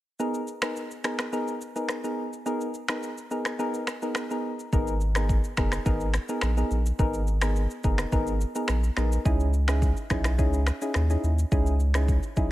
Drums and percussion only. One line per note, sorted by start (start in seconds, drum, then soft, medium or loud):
0.20 shaker medium
0.34 shaker soft
0.47 shaker soft
0.62 finger snap medium
0.62 cross-stick loud
0.62 shaker medium
0.76 shaker medium
0.91 shaker soft
1.04 finger snap medium
1.04 cross-stick medium
1.04 shaker soft
1.19 finger snap medium
1.19 cross-stick loud
1.19 shaker medium
1.33 shaker medium
1.48 shaker soft
1.61 shaker medium
1.76 shaker medium
1.89 finger snap medium
1.89 cross-stick medium
1.89 shaker medium
2.04 shaker medium
2.33 shaker soft
2.46 shaker medium
2.61 shaker medium
2.74 shaker soft
2.88 finger snap medium
2.88 cross-stick loud
2.88 shaker medium
3.03 shaker medium
3.18 shaker medium
3.31 shaker medium
3.45 finger snap medium
3.45 cross-stick loud
3.45 shaker medium
3.59 shaker medium
3.74 shaker soft
3.87 finger snap medium
3.87 cross-stick medium
3.87 shaker medium
4.02 shaker medium
4.15 finger snap medium
4.15 cross-stick medium
4.15 shaker medium
4.31 shaker medium
4.59 shaker soft
4.73 kick loud
4.73 shaker medium
4.87 shaker medium
5.01 shaker medium
5.15 finger snap medium
5.15 cross-stick loud
5.15 shaker medium
5.29 kick loud
5.29 shaker medium
5.44 shaker medium
5.57 finger snap medium
5.57 kick medium
5.57 cross-stick medium
5.57 shaker medium
5.72 finger snap medium
5.72 cross-stick loud
5.72 shaker medium
5.86 kick medium
5.86 shaker medium
6.00 shaker medium
6.14 finger snap medium
6.14 cross-stick medium
6.14 shaker medium
6.29 shaker medium
6.41 finger snap medium
6.41 cross-stick loud
6.41 shaker medium
6.57 shaker medium
6.71 shaker soft
6.86 shaker medium
6.99 kick loud
6.99 shaker medium
7.14 shaker medium
7.27 shaker medium
7.42 finger snap loud
7.42 cross-stick loud
7.42 shaker loud
7.56 shaker medium
7.70 shaker medium
7.84 kick medium
7.84 shaker medium
7.98 finger snap medium
7.98 cross-stick loud
7.98 shaker medium
8.12 kick medium
8.12 shaker medium
8.27 shaker medium
8.41 shaker medium
8.55 shaker loud
8.68 finger snap medium
8.68 cross-stick medium
8.68 shaker medium
8.84 shaker medium
8.97 finger snap medium
8.97 cross-stick medium
8.97 shaker soft
9.12 shaker medium
9.25 kick loud
9.25 shaker medium
9.40 shaker soft
9.53 shaker medium
9.68 finger snap medium
9.68 cross-stick loud
9.68 shaker medium
9.82 kick medium
9.82 shaker medium
9.97 shaker medium
10.10 finger snap medium
10.10 kick medium
10.10 cross-stick medium
10.10 shaker medium
10.24 finger snap medium
10.24 cross-stick loud
10.24 shaker medium
10.39 kick medium
10.39 shaker medium
10.53 shaker medium
10.67 finger snap medium
10.67 cross-stick medium
10.67 shaker medium
10.82 shaker loud
10.94 finger snap medium
10.94 cross-stick medium
10.94 shaker medium
11.10 shaker medium
11.24 shaker medium
11.39 shaker medium
11.52 kick loud
11.52 shaker medium
11.66 shaker medium
11.80 shaker soft
11.94 finger snap loud
11.94 cross-stick loud
11.94 shaker loud
12.08 kick medium
12.08 shaker medium
12.23 shaker medium
12.36 kick medium
12.36 shaker medium